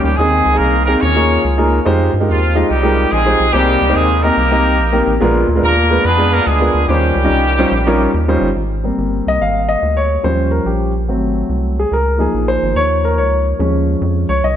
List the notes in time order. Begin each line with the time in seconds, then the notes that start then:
Already playing: G3 A#3 C#4 D#4 A#4
0.03 D2 G3 G4
0.16 D#2 D#3 G#3 C4 D#4 G#4
0.20 G#4
0.46 C#2
0.53 C4 D#4 G#4
0.58 C2 A#3 A#4
0.86 A#3 C4 D#4 G#4 A#4
1.01 D#2 D#3 C#4 F4 G#4 C#5
1.16 A#3 D#4 F4 G#4 C#5
1.44 C#2
1.58 A#3 D#4 F4 G#4 A#4
1.85 F2 G#3 D#4 F4 G4 C5
2.14 G2
2.20 G#3 D#4 F4 G4 A#4
2.28 D#2 F3 G#3 C4 F4
2.55 G#3 D#4 F4 G4 D#5
2.70 C2 G3 C4 D#4 G4
2.83 G#3 D#4 F4 G4 A#4
3.11 A#1 G#3 C4 D#4 G#4
3.26 G#3 D#4 F4 G4 C5
3.40 B1
3.53 C2 C3 G3 A#3 C4 D#4 G4 C5
3.82 C#2
3.89 A#3 C4 D#4 G4 C5
3.95 D#2 G#3 G#4
4.23 A#3 C4 D#4 G4 A#4 D#5
4.37 C2
4.51 A#3 C4 D#4 G4 D#5
4.79 A#1
4.92 A#3 C4 D#4 G4 A#4
5.07 A1
5.21 A#1 A#2 G#3 B3 D4 F4 A#4
5.48 D2
5.55 G#3 B3 D4 F4 A#4
5.63 D#2 A#3 D4 F4 A#4
5.90 G#3 B3 D4 F4 B4
6.05 F2 B3 D4 G#4 B4
6.18 G#3 B3 D4 F4 B4
6.33 A#3 A#4
6.47 D2 G#3 B3 D4 G#4
6.60 G#3 B3 D4 F4 A#4
6.74 D2
6.88 D#2 D#3 G3 A#3 C#4 D#4 F4 G4 C5
7.16 C#2
7.24 G3 C#4 D#4 F4 D#5
7.30 C2
7.58 G3 C#4 D#4 F4 C5
7.71 A#1
7.87 G3 C#4 D#4 F4 A#4
8.14 D#2
8.28 G3 C#4 D#4 F4 C5
8.41 G1
8.56 G#1
8.84 G3 A#3 C4
8.98 G1
9.27 C2 D#5
9.41 G#1 F5
9.69 D#5
9.83 D2
9.97 C#5
10.23 D#2 F3 G3 C#4 C5
10.51 A#4
10.66 A#1 G4
11.08 G#1 F#3 A3 C4
11.49 C2
11.79 G#4
11.92 C#2 A#4
12.18 F3 A#3 D#4 G#4
12.34 A#1
12.48 C5
12.63 G#1
12.76 D#2 C#5
13.05 A#4
13.18 C#2 C#5
13.59 D#2 F3 G#3 C#4
14.01 F2
14.29 C#2 C#5
14.44 C2 D#5